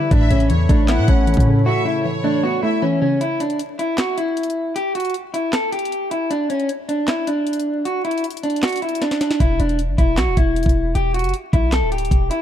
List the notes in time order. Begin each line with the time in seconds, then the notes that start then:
Already playing: D3 E3 G3 B3 E5
0.11 A1 A2 D4 A4 C#5 E5 B5, kick, closed hi-hat
0.30 A1 C#3 C#4, closed hi-hat
0.40 closed hi-hat
0.50 E2 E3 C#5, closed hi-hat
0.69 A1 A3 D4, kick, closed hi-hat
0.88 B3 E4 F#5, snare, clap, closed hi-hat
0.98 A2
1.08 A1 A3 C#4, kick, closed hi-hat
1.27 E3, closed hi-hat
1.34 A2, kick, closed hi-hat
1.40 closed hi-hat
1.47 C#3
1.66 A2 F#4 E5
1.85 C#3 E4
2.05 E3 C#5
2.24 A3 D4
2.43 B3 F#4
2.63 A3 E4 E5
2.82 E3 C#4
3.02 C#3 C#4
3.21 E4, closed hi-hat
3.40 D4, closed hi-hat
3.50 closed hi-hat
3.59 closed hi-hat
3.79 E4, closed hi-hat
3.98 F#4, snare, clap, closed hi-hat
4.18 E4, closed hi-hat
4.37 closed hi-hat
4.43 closed hi-hat
4.50 closed hi-hat
4.76 G4, closed hi-hat
4.95 F#4, closed hi-hat
5.00 closed hi-hat
5.05 closed hi-hat
5.10 closed hi-hat
5.14 closed hi-hat
5.34 E4, closed hi-hat
5.53 A4, snare, clap, closed hi-hat
5.72 G4, closed hi-hat
5.79 closed hi-hat
5.85 closed hi-hat
5.92 closed hi-hat
6.11 E4, closed hi-hat
6.31 D4, closed hi-hat
6.50 C#4, closed hi-hat
6.60 closed hi-hat
6.69 closed hi-hat
6.89 D4, closed hi-hat
7.08 E4, snare, clap, closed hi-hat
7.27 D4, closed hi-hat
7.47 closed hi-hat
7.53 closed hi-hat
7.60 closed hi-hat
7.85 F#4, closed hi-hat
8.05 E4, closed hi-hat
8.11 closed hi-hat
8.18 closed hi-hat
8.24 closed hi-hat
8.30 closed hi-hat
8.37 closed hi-hat
8.43 D4, closed hi-hat
8.50 closed hi-hat
8.56 closed hi-hat
8.63 F#4, snare, clap, closed hi-hat
8.68 closed hi-hat
8.69 closed hi-hat
8.72 closed hi-hat
8.76 closed hi-hat
8.77 closed hi-hat
8.82 E4, closed hi-hat
8.89 closed hi-hat
8.95 closed hi-hat
9.01 D4, snare, closed hi-hat
9.11 snare, closed hi-hat
9.21 D4, snare, closed hi-hat
9.31 snare
9.40 E1 E4, kick, closed hi-hat
9.60 E1 D4, closed hi-hat
9.69 closed hi-hat
9.79 closed hi-hat
9.89 G1
9.98 E1 E4, kick, closed hi-hat
10.17 B1 F#4, snare, clap, closed hi-hat
10.27 E1
10.37 E1 E4, kick, closed hi-hat
10.56 closed hi-hat
10.63 E1, kick, closed hi-hat
10.69 closed hi-hat
10.95 E1 G4, closed hi-hat
11.14 F#4, closed hi-hat
11.19 closed hi-hat
11.24 F#1, closed hi-hat
11.29 closed hi-hat
11.34 closed hi-hat
11.53 B1 E4, kick, closed hi-hat
11.72 A4, snare, clap, closed hi-hat
11.82 D1
11.92 G4, closed hi-hat
11.98 closed hi-hat
12.05 closed hi-hat
12.11 E1, kick, closed hi-hat
12.31 E4, closed hi-hat